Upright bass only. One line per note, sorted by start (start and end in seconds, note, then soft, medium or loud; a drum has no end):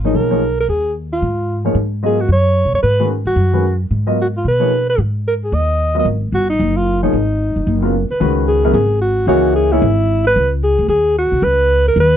0.00 0.12 G#1 medium
0.14 0.65 B1 medium
0.68 1.19 D#2 medium
1.22 1.73 G#2 medium
1.75 2.26 G#2 medium
2.28 2.62 F#2 medium
2.65 2.73 B2 medium
2.73 2.82 F#2 soft
2.83 3.23 G#2 medium
3.25 3.36 G2 medium
3.36 3.87 F#2 medium
3.91 4.42 G#2 medium
4.45 4.95 B2 medium
4.98 5.49 G#2 medium
5.52 6.03 D#2 medium
6.05 6.30 G#1 medium
6.32 6.57 G1 medium
6.59 7.11 F#1 medium
7.13 7.53 G#1 medium
7.56 7.66 F#1 medium
7.67 8.07 F#1 medium
8.10 muted upright bass stroke soft
8.21 8.72 C#2 medium
8.74 9.25 G#1 medium
9.27 9.79 C#2 medium
9.82 10.33 G#1 medium
10.36 10.76 C#2 medium
10.79 10.88 D2 medium
10.88 11.29 D#2 medium
11.32 11.42 C2 medium
11.42 11.93 C#2 medium
11.96 12.17 D#2 medium